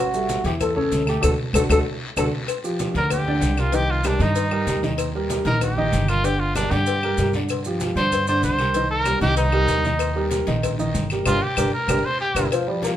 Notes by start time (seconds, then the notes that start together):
Already playing: A1
0.00 F#4
0.14 G3 A4 E5, high conga, maracas
0.29 cowbell, high conga, short guiro, maracas
0.44 E2 E3 E4 G4 E5, cowbell, high conga, short guiro, maracas
0.60 A4, cowbell, high conga, low conga, long guiro, claves, maracas
0.76 C#3 C#4 A4 C#5, high conga, low conga
0.92 D2, cowbell, high conga, short guiro, maracas
1.06 A3 G4 A4 A5, high conga, short guiro, claves, maracas
1.21 D2 D4 F#4 A4, cowbell, high conga, long guiro, claves, maracas
1.53 D2 D4 F#4 A4, cowbell, high conga, long guiro, claves, maracas
1.69 D2 D4 F#4 A4, cowbell, high conga, long guiro, claves, maracas
2.17 D2 D4 F#4 A4, cowbell, high conga, long guiro, claves, maracas
2.48 cowbell, high conga, long guiro, claves, maracas
2.64 F3 F4 G4, high conga, maracas
2.79 F3 F4 G4, cowbell, high conga, short guiro, maracas
2.94 D2 D3 D4 A#4 D5, cowbell, high conga, short guiro, maracas
3.10 G4, cowbell, high conga, low conga, long guiro, claves, maracas
3.27 D3 D4 D5, high conga, low conga
3.41 C2, cowbell, high conga, short guiro, maracas
3.57 G3 F4 G4 A#4, high conga, short guiro, claves, maracas
3.72 D#3 D#4 G4 D#5, cowbell, high conga, long guiro, maracas
3.90 F4, high conga
4.04 G3 D4 G4 A#4, cowbell, high conga, short guiro, claves, maracas
4.19 G2 D#3 D#4 D#5, cowbell, high conga, short guiro, maracas
4.35 cowbell, high conga, long guiro, maracas
4.51 G3 G4 A#4, high conga, claves
4.66 D#2 G3 G4 A#4, cowbell, high conga, short guiro, maracas
4.83 D#3 D#4 D#5, high conga, short guiro, maracas
4.98 cowbell, high conga, long guiro, claves, maracas
5.15 G3 G4 A#4, high conga
5.30 G3 G4 A#4, cowbell, high conga, short guiro, maracas
5.45 A#1 D#3 D#4 A#4 D#5, cowbell, high conga, short guiro, maracas
5.61 G4, cowbell, high conga, low conga, long guiro, claves, maracas
5.77 D#3 D#4 D#5, high conga, low conga
5.92 G1, cowbell, high conga, short guiro, maracas
6.08 G3 F4 G4 A#4, high conga, short guiro, claves, maracas
6.24 D3 D4 G4 D5, cowbell, high conga, long guiro, maracas
6.40 F4, high conga
6.55 G3 D4 G4 A#4, cowbell, high conga, short guiro, claves, maracas
6.71 G2 D3 D4 G4 D5, cowbell, high conga, short guiro, maracas
6.86 cowbell, high conga, long guiro, maracas
7.03 G3 G4 A#4, high conga, claves
7.18 G2 G3 G4 A#4, cowbell, high conga, short guiro, maracas
7.33 D3 D4 D5, high conga, short guiro, maracas
7.49 cowbell, high conga, long guiro, claves, maracas
7.65 F3 F4 G4, high conga, maracas
7.80 F3 F4 G4, cowbell, high conga, short guiro, maracas
7.95 G2 D3 D4 C5 D5, cowbell, high conga, short guiro, maracas
8.12 cowbell, high conga, low conga, long guiro, claves, maracas
8.27 D3 D4 C5 D5, high conga, maracas
8.43 C2 C5, cowbell, high conga, short guiro, maracas
8.59 G3 G4 A#4, high conga, short guiro, claves, maracas
8.74 D#3 D#4 D#5, cowbell, high conga, long guiro, maracas
8.90 A#4, high conga
9.05 G3 G4 A#4, cowbell, high conga, short guiro, claves, maracas
9.21 C2 D#3 D#4 G4 D#5, cowbell, high conga, short guiro, maracas
9.37 D#4, cowbell, high conga, maracas
9.52 G3 G4 A#4, claves
9.68 D#2 G3 G4 A#4, cowbell, high conga, short guiro, maracas
9.84 D#3 D#4 D#5, high conga, short guiro, maracas
9.99 cowbell, high conga, long guiro, claves, maracas
10.16 G3 G4 A#4, high conga
10.31 G3 G4 A#4, cowbell, high conga, short guiro, maracas
10.47 A#1 D#3 D#4 D#5, cowbell, high conga, short guiro, maracas
10.62 cowbell, high conga, low conga, long guiro, claves, maracas
10.79 D#3 D#4 D#5, high conga, maracas
10.94 G1, cowbell, high conga, short guiro, maracas
11.10 G3 G4 A#4, high conga, short guiro, claves, maracas
11.25 G1 D4 F4 G4 A#4, cowbell, high conga, long guiro, claves, maracas
11.42 G4
11.57 G1 D4 G4 A#4, cowbell, high conga, long guiro, claves, maracas
11.74 A#4
11.88 G1 D4 G4 A#4, cowbell, high conga, long guiro, claves, maracas
12.05 C5
12.20 G4
12.35 G1 D4 G4 A#4, cowbell, high conga, long guiro, claves, maracas
12.52 F3, cowbell, high conga, long guiro, claves, maracas
12.67 F3 G3 F4 G4, high conga
12.83 F3 A#3 F4 G4, cowbell, high conga, short guiro, maracas